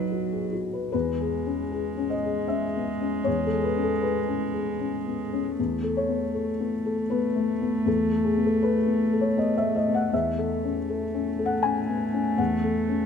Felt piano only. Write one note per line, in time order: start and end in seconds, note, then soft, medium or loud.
0.00 0.89 B1 soft
0.00 0.96 D#4 soft
0.00 0.12 F#4 soft
0.00 0.96 A4 soft
0.00 0.73 B4 soft
0.00 0.96 D#5 soft
0.12 0.45 F#4 soft
0.33 0.53 G#4 soft
0.53 0.85 F#4 soft
0.73 0.91 B4 soft
0.92 3.22 E2 soft
0.92 2.06 B4 medium
1.21 1.62 G#4 soft
1.46 1.87 C#4 soft
1.72 2.13 G#4 soft
1.97 2.39 C#4 soft
2.10 2.46 D#5 medium
2.25 2.66 G#4 soft
2.48 2.90 C#4 soft
2.48 3.22 E5 medium
2.76 3.01 B3 soft
3.01 3.41 C#4 soft
3.24 5.54 E2 soft
3.24 3.43 C#5 medium
3.46 3.64 A4 medium
3.51 3.92 G#4 soft
3.63 3.82 B4 medium
3.76 4.18 C#4 soft
3.83 4.01 A4 medium
4.02 4.44 G#4 soft
4.02 5.54 B4 medium
4.27 4.70 C#4 soft
4.54 4.96 G#4 soft
4.79 5.21 C#4 soft
5.06 5.32 B3 soft
5.33 5.58 C#4 soft
5.59 7.83 E2 soft
5.83 6.24 A4 soft
5.97 7.07 C#5 medium
6.09 6.49 B3 soft
6.34 6.75 A4 soft
6.60 7.01 B3 soft
6.86 7.26 A4 soft
7.10 7.51 B3 soft
7.10 7.82 B4 soft
7.36 7.61 A3 soft
7.61 8.02 B3 soft
7.86 10.08 E2 soft
7.86 8.11 A4 medium
8.12 8.44 A4 soft
8.24 8.42 G#4 medium
8.37 8.77 B3 soft
8.46 8.61 A4 medium
8.63 9.02 A4 soft
8.63 9.15 B4 medium
8.87 9.27 B3 soft
9.12 9.52 A4 soft
9.21 9.37 C#5 medium
9.37 9.77 B3 soft
9.37 9.55 D#5 medium
9.57 9.74 E5 medium
9.62 9.87 A3 soft
9.76 9.93 D#5 medium
9.88 10.13 B3 soft
9.94 10.12 F#5 medium
10.13 12.35 E2 soft
10.13 11.41 E5 medium
10.38 10.78 A4 soft
10.64 11.04 C#4 soft
10.89 11.29 A4 soft
11.14 11.54 C#4 soft
11.39 11.79 A4 soft
11.45 11.63 F#5 medium
11.63 12.04 C#4 soft
11.63 12.34 G#5 medium
11.88 12.13 B3 soft
12.13 12.54 C#4 soft
12.38 13.06 E2 soft
12.38 13.06 F#5 medium
12.64 13.05 A4 soft
12.88 13.06 C#4 soft